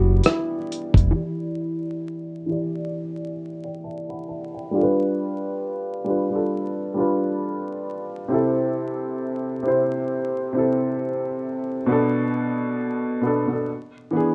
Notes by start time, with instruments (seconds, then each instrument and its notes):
Already playing: sub bass F#1, upright piano E3 G3 B3 D4 G4, nylon-string guitar F#4
0.23 nylon-string guitar E4, cross-stick, closed hi-hat
0.72 closed hi-hat
0.94 sub bass F1, kick, closed hi-hat
1.11 upright piano E3 E4 G4
1.16 upright piano D5
2.46 upright piano E3 E4 G4
2.52 upright piano D5
3.64 upright piano D5 G5
3.84 upright piano E5 A5
4.09 upright piano F#5 B5
4.28 upright piano E5 A5
4.54 upright piano D5 G5
4.71 upright piano G3 D4 F4
4.77 upright piano A4
4.83 upright piano B4
6.04 upright piano G3 D4 F4
6.10 upright piano B4
6.30 upright piano G3 D4 F4
6.35 upright piano A4
6.94 upright piano G3 D4 F4
7.00 upright piano B4
8.28 upright piano C3 C4 E4
8.34 upright piano A4
9.62 upright piano C3 C4 E4
9.68 upright piano C5
10.53 upright piano C3 C4 E4
10.58 upright piano A4
11.86 upright piano B2 B3 D4
11.92 upright piano A4
13.21 upright piano B2 B3 D4
13.27 upright piano A4
13.47 upright piano B2 B3 D4
13.52 upright piano A4
14.11 upright piano E3 B3 D4
14.16 upright piano G#4